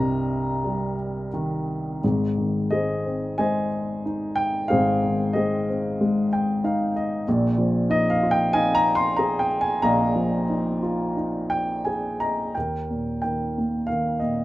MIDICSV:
0, 0, Header, 1, 2, 480
1, 0, Start_track
1, 0, Tempo, 684151
1, 1424, Time_signature, 4, 2, 24, 8
1, 2376, Tempo, 652174
1, 3816, Tempo, 639659
1, 7176, Tempo, 667408
1, 8136, Tempo, 699301
1, 9096, Tempo, 653595
1, 10484, End_track
2, 0, Start_track
2, 0, Title_t, "Grand piano"
2, 0, Program_c, 0, 0
2, 0, Control_c, 0, 64, 127
2, 0, Note_on_c, 0, 36, 73
2, 0, Note_on_c, 0, 43, 54
2, 0, Note_on_c, 0, 48, 53
2, 0, Note_on_c, 0, 70, 73
2, 0, Note_on_c, 0, 75, 70
2, 0, Note_on_c, 0, 79, 68
2, 0, Note_on_c, 0, 82, 103
2, 452, Note_on_c, 0, 55, 64
2, 660, Note_off_c, 0, 43, 0
2, 897, Note_off_c, 0, 82, 0
2, 902, Note_off_c, 0, 70, 0
2, 903, Note_off_c, 0, 75, 0
2, 903, Note_off_c, 0, 79, 0
2, 904, Note_off_c, 0, 48, 0
2, 938, Note_on_c, 0, 51, 61
2, 1399, Note_off_c, 0, 36, 0
2, 1399, Note_off_c, 0, 55, 0
2, 1412, Note_off_c, 0, 51, 0
2, 1429, Note_on_c, 0, 32, 52
2, 1433, Control_c, 0, 64, 0
2, 1433, Note_on_c, 0, 44, 54
2, 1561, Control_c, 0, 64, 127
2, 1669, Note_on_c, 0, 51, 43
2, 1898, Note_on_c, 0, 75, 74
2, 1911, Note_on_c, 0, 68, 56
2, 1912, Note_on_c, 0, 72, 50
2, 1913, Note_on_c, 0, 56, 44
2, 2146, Note_on_c, 0, 60, 47
2, 2368, Note_off_c, 0, 56, 0
2, 2370, Note_off_c, 0, 75, 0
2, 2370, Note_on_c, 0, 80, 86
2, 2374, Note_off_c, 0, 72, 0
2, 2379, Note_on_c, 0, 56, 52
2, 2380, Note_on_c, 0, 75, 65
2, 2385, Note_on_c, 0, 72, 61
2, 2592, Note_off_c, 0, 51, 0
2, 2835, Note_off_c, 0, 68, 0
2, 2869, Note_on_c, 0, 63, 51
2, 3075, Note_off_c, 0, 60, 0
2, 3089, Note_on_c, 0, 79, 84
2, 3120, Note_off_c, 0, 80, 0
2, 3314, Note_off_c, 0, 56, 0
2, 3314, Note_off_c, 0, 75, 0
2, 3315, Note_off_c, 0, 32, 0
2, 3317, Note_off_c, 0, 44, 0
2, 3317, Note_off_c, 0, 72, 0
2, 3329, Note_on_c, 0, 77, 85
2, 3342, Note_on_c, 0, 72, 61
2, 3343, Note_off_c, 0, 79, 0
2, 3344, Note_on_c, 0, 68, 57
2, 3353, Note_on_c, 0, 44, 59
2, 3356, Note_on_c, 0, 32, 57
2, 3595, Note_on_c, 0, 51, 49
2, 3791, Note_off_c, 0, 63, 0
2, 3809, Note_on_c, 0, 75, 71
2, 3812, Note_off_c, 0, 68, 0
2, 3812, Note_off_c, 0, 72, 0
2, 3823, Note_on_c, 0, 72, 50
2, 3824, Note_off_c, 0, 77, 0
2, 3824, Note_on_c, 0, 68, 51
2, 3836, Note_on_c, 0, 56, 49
2, 4082, Note_on_c, 0, 60, 51
2, 4304, Note_off_c, 0, 56, 0
2, 4315, Note_on_c, 0, 56, 56
2, 4519, Note_off_c, 0, 51, 0
2, 4555, Note_on_c, 0, 79, 67
2, 4772, Note_off_c, 0, 79, 0
2, 4790, Note_on_c, 0, 63, 58
2, 4793, Note_on_c, 0, 77, 70
2, 4986, Note_off_c, 0, 75, 0
2, 4993, Note_off_c, 0, 68, 0
2, 4993, Note_off_c, 0, 72, 0
2, 5004, Note_off_c, 0, 60, 0
2, 5009, Note_off_c, 0, 77, 0
2, 5032, Note_on_c, 0, 75, 67
2, 5231, Note_off_c, 0, 44, 0
2, 5233, Note_off_c, 0, 32, 0
2, 5235, Note_off_c, 0, 56, 0
2, 5245, Note_off_c, 0, 63, 0
2, 5245, Note_off_c, 0, 75, 0
2, 5264, Control_c, 0, 64, 0
2, 5269, Note_on_c, 0, 46, 71
2, 5272, Note_on_c, 0, 34, 62
2, 5394, Control_c, 0, 64, 127
2, 5496, Note_on_c, 0, 53, 56
2, 5733, Note_on_c, 0, 63, 57
2, 5740, Note_on_c, 0, 75, 92
2, 5884, Note_on_c, 0, 77, 80
2, 5898, Note_off_c, 0, 75, 0
2, 5983, Note_on_c, 0, 65, 56
2, 6043, Note_on_c, 0, 79, 93
2, 6050, Note_off_c, 0, 77, 0
2, 6206, Note_off_c, 0, 63, 0
2, 6209, Note_off_c, 0, 79, 0
2, 6209, Note_on_c, 0, 77, 67
2, 6210, Note_on_c, 0, 80, 102
2, 6215, Note_on_c, 0, 75, 72
2, 6218, Note_on_c, 0, 63, 61
2, 6370, Note_on_c, 0, 82, 100
2, 6372, Note_off_c, 0, 80, 0
2, 6419, Note_off_c, 0, 53, 0
2, 6525, Note_on_c, 0, 84, 93
2, 6533, Note_off_c, 0, 82, 0
2, 6684, Note_on_c, 0, 82, 90
2, 6692, Note_off_c, 0, 84, 0
2, 6702, Note_on_c, 0, 68, 59
2, 6854, Note_off_c, 0, 82, 0
2, 6855, Note_on_c, 0, 79, 85
2, 6911, Note_off_c, 0, 65, 0
2, 7018, Note_on_c, 0, 80, 84
2, 7020, Note_off_c, 0, 79, 0
2, 7148, Note_off_c, 0, 77, 0
2, 7150, Note_off_c, 0, 75, 0
2, 7153, Note_off_c, 0, 46, 0
2, 7153, Note_off_c, 0, 63, 0
2, 7154, Note_off_c, 0, 34, 0
2, 7178, Note_on_c, 0, 82, 93
2, 7181, Note_on_c, 0, 34, 64
2, 7182, Note_on_c, 0, 46, 69
2, 7183, Note_off_c, 0, 80, 0
2, 7189, Note_on_c, 0, 75, 66
2, 7189, Note_on_c, 0, 77, 59
2, 7417, Note_on_c, 0, 53, 52
2, 7628, Note_off_c, 0, 68, 0
2, 7663, Note_on_c, 0, 63, 51
2, 7899, Note_on_c, 0, 65, 52
2, 8135, Note_off_c, 0, 63, 0
2, 8145, Note_on_c, 0, 63, 51
2, 8351, Note_off_c, 0, 53, 0
2, 8371, Note_on_c, 0, 79, 83
2, 8610, Note_on_c, 0, 80, 71
2, 8623, Note_on_c, 0, 68, 47
2, 8625, Note_off_c, 0, 79, 0
2, 8835, Note_off_c, 0, 82, 0
2, 8838, Note_off_c, 0, 65, 0
2, 8840, Note_off_c, 0, 75, 0
2, 8840, Note_off_c, 0, 77, 0
2, 8854, Note_on_c, 0, 82, 80
2, 8863, Note_on_c, 0, 75, 57
2, 8864, Note_off_c, 0, 80, 0
2, 9071, Note_off_c, 0, 34, 0
2, 9072, Note_off_c, 0, 46, 0
2, 9073, Note_off_c, 0, 63, 0
2, 9081, Note_off_c, 0, 75, 0
2, 9084, Note_off_c, 0, 68, 0
2, 9091, Note_on_c, 0, 79, 66
2, 9100, Note_off_c, 0, 82, 0
2, 9105, Control_c, 0, 64, 0
2, 9107, Note_on_c, 0, 39, 46
2, 9108, Note_on_c, 0, 70, 50
2, 9232, Control_c, 0, 64, 127
2, 9353, Note_on_c, 0, 46, 37
2, 9555, Note_off_c, 0, 79, 0
2, 9583, Note_on_c, 0, 79, 66
2, 9587, Note_off_c, 0, 70, 0
2, 9598, Note_on_c, 0, 70, 46
2, 9603, Note_on_c, 0, 51, 39
2, 9848, Note_on_c, 0, 58, 42
2, 10060, Note_on_c, 0, 77, 74
2, 10067, Note_off_c, 0, 70, 0
2, 10071, Note_off_c, 0, 51, 0
2, 10078, Note_on_c, 0, 70, 47
2, 10081, Note_off_c, 0, 79, 0
2, 10082, Note_on_c, 0, 51, 41
2, 10281, Note_off_c, 0, 46, 0
2, 10300, Note_on_c, 0, 75, 63
2, 10307, Note_off_c, 0, 77, 0
2, 10317, Note_on_c, 0, 46, 39
2, 10484, Note_off_c, 0, 39, 0
2, 10484, Note_off_c, 0, 46, 0
2, 10484, Note_off_c, 0, 51, 0
2, 10484, Note_off_c, 0, 58, 0
2, 10484, Note_off_c, 0, 70, 0
2, 10484, Note_off_c, 0, 75, 0
2, 10484, End_track
0, 0, End_of_file